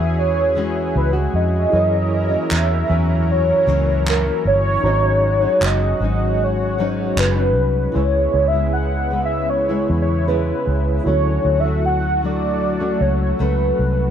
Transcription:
Already playing: fingered electric bass E2, nylon-string guitar E3 G#3 C#4 F#4, analog synth pad C#4 E4 F#4 G#4, reed electric piano F#4 G#4 B4 C#5, soft synth lead E5
0.19 soft synth lead C#5
0.55 nylon-string guitar E3 G#3 C#4 F#4
0.96 fingered electric bass C#2, soft synth lead B4
1.13 nylon-string guitar C#4 F#4
1.17 nylon-string guitar G#3
1.34 fingered electric bass F2, soft synth lead D#5
1.70 nylon-string guitar F#2 E3, fingered electric bass F#2, analog synth pad F#3 E4 A#4, reed electric piano E4 G#4 A#4
1.75 nylon-string guitar A#3 C#4, reed electric piano C#5
2.30 nylon-string guitar E3 A#3 C#4
2.51 fingered electric bass E2, soft synth lead E5, clap
2.87 fingered electric bass E2, nylon-string guitar F#2 E3 A#3
2.92 nylon-string guitar C#4
3.31 soft synth lead C#5
3.67 fingered electric bass C#2, nylon-string guitar F#2 E3 A#3 C#4
4.07 soft synth lead A#4, clap
4.24 nylon-string guitar A#3 C#4
4.29 nylon-string guitar E3
4.45 fingered electric bass G1, soft synth lead C#5
4.81 fingered electric bass G#1, nylon-string guitar G#2 F#3, analog synth pad G#3 F#4, reed electric piano D#4 F#4 A#5
4.86 nylon-string guitar C#4 D#4, reed electric piano C#5
5.42 nylon-string guitar F#3 C#4 D#4
5.61 fingered electric bass F#1, clap
5.65 soft synth lead D#5
6.00 fingered electric bass G#1, nylon-string guitar G#2 F#3 C#4
6.04 nylon-string guitar D#4
6.44 soft synth lead C#5
6.78 nylon-string guitar G#2 F#3 C#4 D#4
7.17 fingered electric bass F#1, soft synth lead B4, clap
7.36 nylon-string guitar C#4 D#4
7.40 nylon-string guitar F#3
7.56 fingered electric bass C2
7.92 fingered electric bass C#2, nylon-string guitar C#3 G#3 B3, analog synth pad C#3 G#3 B3 E4, reed electric piano E4 G#4 B4, soft synth lead C#5
7.96 nylon-string guitar E4, reed electric piano C#5
8.34 fingered electric bass C#2
8.47 soft synth lead E5
8.52 nylon-string guitar G#3 B3 E4
8.73 soft synth lead F#5
9.11 nylon-string guitar C#3 G#3 B3 E4
9.25 soft synth lead E5
9.50 soft synth lead C#5
9.69 nylon-string guitar C#3 G#3 B3 E4
9.90 fingered electric bass E2
10.02 soft synth lead C#5
10.27 nylon-string guitar C#3 G#3 B3 E4, reed electric piano E4 G#4 B4 C#5, soft synth lead B4
10.67 fingered electric bass C#2
11.04 fingered electric bass D2, nylon-string guitar D3 F#3 A3, analog synth pad F#3 A3 F#4, reed electric piano E4 F#4 A4, soft synth lead C#5
11.08 nylon-string guitar C#4
11.45 fingered electric bass D2
11.60 nylon-string guitar C#4, soft synth lead E5
11.65 nylon-string guitar F#3 A3
11.86 soft synth lead F#5
12.22 nylon-string guitar D3 F#3 A3, soft synth lead D5
12.80 nylon-string guitar F#3 A3 C#4
13.01 fingered electric bass C#2, soft synth lead C#5
13.39 fingered electric bass C#2, nylon-string guitar F#3 A3 C#4, soft synth lead B4
13.79 fingered electric bass C2

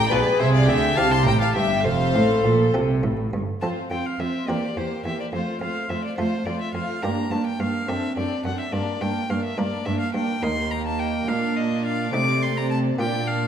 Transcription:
Already playing: double bass section A1, cello section A2, violin section G5 A#5, violin G5
0.11 double bass section B1, cello section B2, harpsichord B2 D4 F4 G#4, viola section G#4, violin B4, violin section B4 D5
0.39 double bass section C2, cello section C3, harpsichord C3, violin section C5 E5, violin C5
0.54 violin D5, violin section D5 F5
0.68 double bass section D2, harpsichord D3, cello section D3, violin section E5 G5, violin E5
0.97 double bass section C2, cello section C3, harpsichord C3 C4 E4 G4, viola section G4, violin F5, violin section F5 A5
1.12 violin section A5 C6, violin A5
1.26 double bass section A1, cello section A2, harpsichord A2, violin G5, violin section G5 A#5
1.41 violin F5, violin section F5 A5
1.55 double bass section G1, cello section G2, harpsichord G2, violin E5, violin section E5 G5
1.85 double bass section F1, cello section F2, harpsichord F2, viola section A4, violin C5, violin section C5 F5
2.15 double bass section A1, cello section A2, harpsichord A2
2.45 double bass section A#1, cello section A#2, harpsichord A#2
2.74 double bass section C2, cello section C3, harpsichord C3 C4 F4 A4
3.03 double bass section A1, cello section A2, harpsichord A2
3.33 double bass section G1, cello section G2, harpsichord G2
3.61 cello section F2, harpsichord F2 C4 F4 A4, viola section C4, violin section F4 C5, violin A5
3.90 cello section F2, harpsichord F2, viola section C4, violin section F4 C5, violin G5
4.06 violin F5
4.19 cello section F2, harpsichord F2, viola section C4, violin section F4 C5, violin E5
4.48 cello section E2, harpsichord E2 C4 G4 A#4, viola section A#3, violin section G4 C5, violin D5
4.76 cello section E2, harpsichord E2, viola section A#3, violin section G4 C5, violin C5
5.04 cello section E2, harpsichord E2, viola section A#3, violin section G4 C5, violin E5
5.20 violin D5
5.33 cello section F2, harpsichord F2, viola section A3, violin section F4 C5, violin C5
5.61 cello section F2, harpsichord F2, viola section A3, violin section F4 C5, violin F5
5.89 cello section F2, harpsichord F2, viola section A3, violin section F4 C5, violin E5
6.05 violin D5
6.18 cello section F2, harpsichord F2 A3 F4 A4, viola section A3, violin section F4 C5, violin C5
6.45 cello section F2, harpsichord F2, viola section A3, violin section F4 C5, violin D5
6.61 violin E5
6.74 cello section F2, harpsichord F2, viola section A3, violin section F4 C5, violin F5
7.02 cello section G2, harpsichord G2 A#3 D4 G4, viola section A#3, violin section D4 G4, violin A#5
7.31 cello section G2, harpsichord G2, viola section A#3, violin section D4 G4, violin A5
7.46 violin G5
7.59 cello section G2, harpsichord G2, viola section A#3, violin section D4 G4, violin F5
7.88 cello section F#2, harpsichord F#2 C4 D4 A4, viola section C4, violin section D4 A4, violin E5
8.16 cello section F#2, harpsichord F#2, viola section C4, violin section D4 A4, violin D5
8.45 cello section F#2, harpsichord F#2, viola section C4, violin section D4 A4, violin F#5
8.60 violin E5
8.72 cello section G2, harpsichord G2, viola section A#3, violin section D4 A#4, violin D5
9.01 cello section G2, harpsichord G2, viola section A#3, violin section D4 A#4, violin G5
9.29 cello section G2, harpsichord G2, viola section A#3, violin section D4 A#4, violin F5
9.45 violin E5
9.57 cello section G2, harpsichord G2 A#3 D4 A#4, viola section A#3, violin section D4 A#4, violin D5
9.85 harpsichord G2, cello section G2, viola section A#3, violin section D4 A#4, violin E5
10.00 violin F5
10.14 cello section G2, harpsichord G2, viola section A#3, violin section D4 A#4, violin G5
10.42 cello section D#2, harpsichord D#2 A#3 D#4 A#4, viola section A#3, violin section D#4 G4, violin C6
10.71 violin A#5
10.86 violin A5
10.99 violin G5
11.27 cello section A#2, harpsichord A#2 A#3 D4 A#4, violin section D4 D5, violin F5
11.57 violin D#5
11.85 violin F5
12.13 cello section C3, harpsichord C3 A3 D#4 D#5, viola section A3, violin section C4, violin D6
12.42 violin C6
12.57 violin A#5
12.70 violin A5
12.98 cello section A#2, harpsichord A#2 A#3 F4 D5, viola section A#3, violin section D4 D5, violin G5
13.27 violin F5

